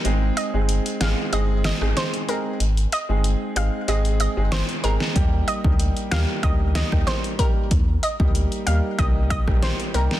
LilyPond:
<<
  \new Staff \with { instrumentName = "Synth pluck" } { \time 4/4 \key ees \major \tempo 4 = 94 r8 ees''16 r8. f''16 r16 ees''16 r16 ees''16 r16 c''16 r16 bes'16 r16 | r8 ees''16 r8. f''16 r16 ees''16 r16 ees''16 r16 c''16 r16 bes'16 r16 | r8 ees''16 r8. f''16 r16 ees''16 r16 ees''16 r16 c''16 r16 bes'16 r16 | r8 ees''16 r8. f''16 r16 ees''16 r16 ees''16 r16 c''16 r16 bes'16 r16 | }
  \new Staff \with { instrumentName = "Grand piano" } { \time 4/4 \key ees \major <aes c' ees' aes'>8. <aes c' ees' aes'>8. <aes c' ees' aes'>8 <aes c' ees' aes'>8. <aes c' ees' aes'>8. <aes c' ees' aes'>8 | r8. <aes c' ees' aes'>8. <aes c' ees' aes'>8 <aes c' ees' aes'>8. <aes c' ees' aes'>8. <aes c' ees' aes'>8 | <g bes ees' g'>8. <g bes ees' g'>8. <g bes ees' g'>8 <g bes ees' g'>8. <g bes ees' g'>8. <g bes ees' g'>8 | r8. <g bes ees' g'>8. <g bes ees' g'>8 <g bes ees' g'>8. <g bes ees' g'>8. <g bes ees' g'>8 | }
  \new Staff \with { instrumentName = "Sub bass" } { \clef bass \time 4/4 \key ees \major aes,,8 r16 g,,8 r16 aes,,16 r16 g,,8. aes,,16 r4 | aes,,8 r16 g,,8 r16 aes,,16 r16 aes,,8. g,,8 r16 aes,,16 r16 | ees,8 r16 d,8 r16 ees,16 r16 d,8. ees,16 r4 | ees,8 r16 d,8 r16 ees,16 r16 c,8. bes,,8 r16 c,16 r16 | }
  \new DrumStaff \with { instrumentName = "Drums" } \drummode { \time 4/4 hh8 hh8 hh16 hh16 <hh sn>8 hh8 <hh sn>16 ss16 <hh sn>16 hh16 hh8 | hh16 hh16 hh8 hh8 hh8 hh16 hh16 hh8 <hh sn>16 hh16 hh16 sn16 | <hh bd>8 hh16 bd16 hh16 hh16 <hh sn>8 <hh bd>8 <hh sn>16 <bd ss>16 <hh sn>16 hh16 <hh bd>8 | <hh bd>8 hh16 bd16 hh16 hh16 hh8 <hh bd>8 <hh bd>16 <bd ss>16 <hh sn>16 hh16 hh16 sn16 | }
>>